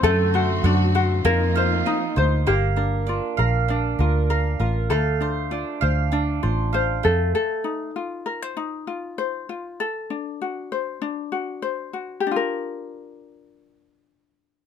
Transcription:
X:1
M:4/4
L:1/16
Q:1/4=98
K:Bb
V:1 name="Mandolin"
A,2 c2 ^f2 c2 B,2 =f2 E2 c2 | [B,f]2 B2 D2 f2 D2 B2 f2 B2 | [A,f]2 c2 D2 f2 D2 c2 f2 A,2 | z16 |
z16 | z16 |]
V:2 name="Ukulele"
A2 ^F2 D2 F2 B2 c2 E2 c2 | G2 D2 F2 B2 D2 F2 B2 F2 | A2 D2 F2 c2 D2 F2 c2 A2 | A2 E2 F2 B c E2 F2 c2 F2 |
A2 D2 ^F2 c2 D2 F2 c2 F2 | [DFGB]16 |]
V:3 name="String section"
[D,^F,A,C^F]8 [=F,B,CE=F]8 | z16 | z16 | z16 |
z16 | z16 |]
V:4 name="Fingered electric bass" clef=bass
^F,,4 F,,4 =F,,4 z2 D,,2 | G,,,4- G,,, z B,,,4 D,,4 A,,,2 | D,,4- D,, z D,,4 A,,,4 F,,2 | z16 |
z16 | z16 |]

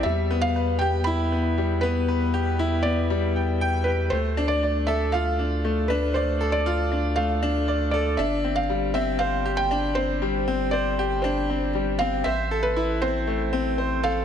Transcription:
X:1
M:4/4
L:1/16
Q:1/4=118
K:Ddor
V:1 name="Felt piano"
e3 f3 g2 b6 B2- | B6 d8 B2 | c3 d3 e2 f6 B2 | c3 d4- d f6 d2 |
e3 f3 e2 f3 g3 c2- | c4 d4 c4 z2 f2 | e3 B3 c8 f2 |]
V:2 name="Upright piano"
G,2 B,2 B2 G2 E2 B,2 G,2 B,2 | B2 G2 E2 B,2 G,2 g2 g2 G2 | A,2 D2 d2 A2 F2 D2 A,2 D2 | d2 A2 F2 D2 A,2 D2 d2 A2 |
D2 C2 G,2 C2 c2 G2 D2 C2 | G,2 C2 c2 G2 D2 C2 G,2 C2 | c2 A2 E2 C2 A,2 C2 c2 A2 |]
V:3 name="Analog synth bass" clef=bass
E,,16- | E,,16 | D,,16- | D,,16 |
G,,,16- | G,,,16 | A,,,16 |]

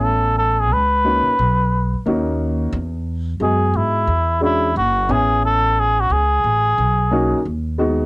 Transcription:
X:1
M:4/4
L:1/16
Q:"Swing 16ths" 1/4=89
K:B
V:1 name="Muted trumpet"
=A2 A G B8 z4 | z4 G2 E4 E2 F2 G2 | =A2 G F G8 z4 |]
V:2 name="Upright piano"
[B,CEg]4 z2 [A,CDF]2 z4 [A,CDF]4 | z4 [G,B,Fd]4 z2 [G,C=DF]2 z2 [B,CEg]2- | [B,CEg]4 z6 [A,CDF]2 z2 [G,B,DF]2 |]
V:3 name="Upright bass" clef=bass
=A,,,4 C,,3 z B,,,3 z D,,4 | E,,4 F,,2 G,,2 E,,4 F,,,2 =A,,,2- | =A,,,4 C,,2 A,,,2 B,,,3 z D,,4 |]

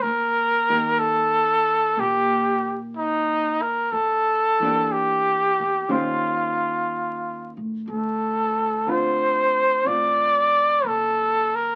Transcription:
X:1
M:4/4
L:1/8
Q:"Swing" 1/4=61
K:Eblyd
V:1 name="Trumpet"
B2 A2 G z E B | A2 G2 F3 z | A2 c2 d2 A B |]
V:2 name="Hollow-body jazz guitar"
z [E,B,G]3 [B,G]4 | z [=E,B,DG]3 [_E,_DGc]4 | z2 [D,CF]2 [CF]4 |]
V:3 name="Upright bass" clef=bass
E,,4 B,,4 | =E,,3 E,, _E,,3 A,, | D,,4 A,,,2 ^F,,,2 |]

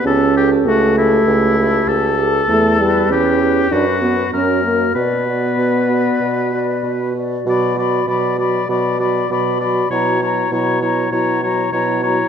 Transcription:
X:1
M:4/4
L:1/8
Q:1/4=98
K:Amix
V:1 name="Flute"
A A2 A2 A2 A | [K:Bm] z B2 B B B ^A A | d d2 d2 d2 d | b b b b b b b b |
^a a a a a a a a |]
V:2 name="Oboe"
A G F E3 A2- | [K:Bm] A2 G2 F2 ^A2 | B6- B z | d d d d d d d d |
c c c c c c c c |]
V:3 name="Clarinet"
G G2 G2 G2 G | [K:Bm] z G2 G F F F F | F F2 F2 F2 F | F F F F F F F F |
E E E E E E E E |]
V:4 name="French horn" clef=bass
C2 A,4- A, z | [K:Bm] A, G, C2 D B, C ^A, | B,6- B, z | F, F, F, F, F, F, F, F, |
F, F, F, F, F, F, F, F, |]
V:5 name="Bassoon" clef=bass
C,,2 C,,2 C,,2 C,,2 | [K:Bm] E,,2 E,,2 F,,2 F,,2 | B,,2 B,,2 B,,2 B,,2 | B,,2 B,,2 B,,2 B,,2 |
B,,2 B,,2 B,,2 B,,2 |]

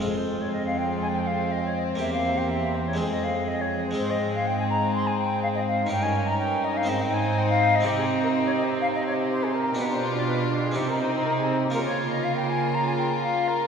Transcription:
X:1
M:4/4
L:1/16
Q:1/4=123
K:Fm
V:1 name="Flute"
A c2 d e f g2 a g f2 e d e2 | =e f2 g e2 c d c _e f2 e d2 c | c e2 f g a b2 c' a g2 f e f2 | g a2 b g2 e f e g a2 g f2 e |
G A2 B c d e2 f e d2 c A B2 | =B c2 =d B2 G A G _B c2 B A2 G | B d2 e f g a2 b a g2 f2 B2 |]
V:2 name="Violin section"
F16 | G8 A8- | A16 | B8 c8 |
G16- | G16 | B16 |]
V:3 name="Violin section"
C16- | C16 | C16 | E16- |
E16 | F8 E8 | F16 |]
V:4 name="Harpsichord"
[F,,A,CF]16 | [=E,,B,CG]8 [F,,A,CA]8 | [A,,A,CA]16 | [G,,DEB]8 [A,,CEc]8 |
[C,CEG]16 | [=B,,=DFG]8 [C,CEG]8 | [D,B,FB]16 |]
V:5 name="Viola section"
A,16 | B,8 A,8- | A,16 | D8 C8- |
C16 | =D8 C8 | B,16 |]
V:6 name="Cello section" clef=bass
F,,16 | =E,,8 F,,8 | A,,16 | G,,8 A,,8 |
C,16 | =B,,8 C,8 | D,16 |]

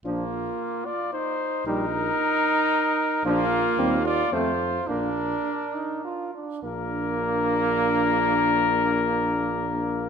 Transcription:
X:1
M:3/4
L:1/8
Q:1/4=106
K:Bb
V:1 name="Trumpet"
F3 d c2 | B6 | F3 d c2 | B4- B z |
B6- | B6 |]
V:2 name="Trumpet"
B,3 F E2 | E6 | B,3 F F2 | D4- D z |
B,6- | B,6 |]
V:3 name="French horn"
D z4 z | E z4 z | D z C z C z | D z4 z |
D6- | D6 |]
V:4 name="Trombone"
F, z4 z | G, z4 z | F, z G, z A, z | B, z D E F D |
B,6- | B,6 |]
V:5 name="Bass trombone" clef=bass
B,,,2 z4 | B,,,2 z4 | B,,,2 E,,2 F,,2 | B,,,2 z4 |
B,,,6- | B,,,6 |]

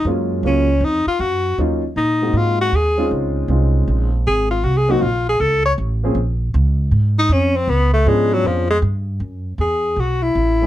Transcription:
X:1
M:4/4
L:1/8
Q:"Swing" 1/4=157
K:Db
V:1 name="Tenor saxophone"
z2 D2 E F G2 | z2 E2 F G A2 | z6 A F | (3G A G F A =A d z2 |
z4 z E D C | _C =A, _A, G, F, A, z2 | [K:F#m] z2 G2 F E3 |]
V:2 name="Grand piano"
[G,A,B,DF]2 [G,A,B,DF] z4 z | [G,B,DEF] z2 [A,B,CEG]3 z [A,CDEF]- | [A,CDEF]2 [A,CDEF]3 z3 | z [G,B,CEG] z4 z [F,B,CDA] |
z8 | z2 [F,_CD=DA]3 z3 | [K:F#m] z6 z [F,A,C^DG] |]
V:3 name="Upright bass" clef=bass
G,,2 D,,2 F,, z G,,2 | E,,2 B,,2 A,,2 E,,2 | D,,2 C,,2 B,,,2 A,,,2 | C,,2 B,,,2 D,,2 =A,,,2 |
B,,,2 D,,2 A,,2 F,,2 | D,,2 A,,2 F,,2 =G,,2 | [K:F#m] F,,2 E,,2 B,,,2 A,,,2 |]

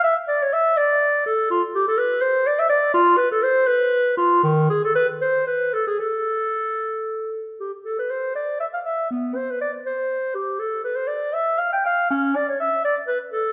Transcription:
X:1
M:6/8
L:1/16
Q:3/8=81
K:Ddor
V:1 name="Clarinet"
e2 d _d e2 =d4 A2 | [K:Am] F2 G A B2 c2 d e d2 | F2 B A c2 B4 F2 | ^D,2 ^G A B2 c2 B2 A G |
A8- A2 z2 | [K:C] G2 A B c2 d2 e f e2 | B,2 c B d2 c4 G2 | A2 B c d2 e2 f g f2 |
_D2 =d _d e2 =d2 B2 A2 |]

